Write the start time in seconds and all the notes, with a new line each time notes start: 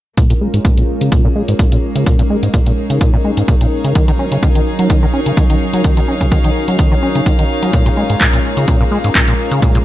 0.17 A#2 G#3 A#3 C#4 F4 A#4, kick, closed hi-hat
0.25 D#4
0.30 A#2, closed hi-hat
0.41 G#3
0.50 G#2 C#5, closed hi-hat
0.65 A#2, kick, closed hi-hat
0.77 A#2, closed hi-hat
1.01 C#3, closed hi-hat
1.10 A#2 G#4, kick, closed hi-hat
1.25 A#2
1.36 G#3
1.48 G#2, closed hi-hat
1.59 A#2, kick, closed hi-hat
1.72 A#2, closed hi-hat
1.88 F5
1.96 C#3, closed hi-hat
2.06 A#2 D#4, kick, closed hi-hat
2.19 A#2, closed hi-hat
2.30 G#3
2.43 G#2, closed hi-hat
2.54 A#2, kick, closed hi-hat
2.66 A#2, closed hi-hat
2.90 C#3, closed hi-hat
3.01 A#2, kick, closed hi-hat
3.14 A#2
3.25 G#3
3.37 G#2, closed hi-hat
3.48 A#2, kick, closed hi-hat
3.61 A#2, closed hi-hat
3.84 C#3, closed hi-hat
3.95 D#3 F#3 C#4, kick, closed hi-hat
4.08 D#3, closed hi-hat
4.19 C#4
4.32 C#3, closed hi-hat
4.43 D#3, kick, closed hi-hat
4.55 D#3, closed hi-hat
4.79 F#3, closed hi-hat
4.90 D#3, kick, closed hi-hat
5.03 D#3
5.14 C#4
5.26 C#3, closed hi-hat
5.37 D#3, kick, closed hi-hat
5.50 D#3, closed hi-hat
5.73 F#3, closed hi-hat
5.84 D#3, kick, closed hi-hat
5.97 D#3, closed hi-hat
6.08 C#4
6.21 C#3, kick, closed hi-hat
6.32 D#3, kick, closed hi-hat
6.44 D#3, closed hi-hat
6.68 F#3, closed hi-hat
6.79 D#3, kick, closed hi-hat
6.92 D#3
7.03 C#4
7.15 C#3, closed hi-hat
7.26 D#3, kick, closed hi-hat
7.39 D#3, closed hi-hat
7.63 F#3, closed hi-hat
7.73 A#2 G#3 A#3 F4 A#4, kick, closed hi-hat
7.86 A#2, closed hi-hat
7.97 G#3
8.10 G#2, closed hi-hat
8.21 A#2, kick, clap, closed hi-hat
8.33 A#2, closed hi-hat
8.57 C#3, closed hi-hat
8.68 A#2, kick, closed hi-hat
8.81 A#2
8.92 G#3
9.04 G#2, closed hi-hat
9.15 A#2, kick, clap, closed hi-hat
9.28 A#2, closed hi-hat
9.51 C#3, closed hi-hat
9.62 A#2, kick, closed hi-hat
9.75 A#2, closed hi-hat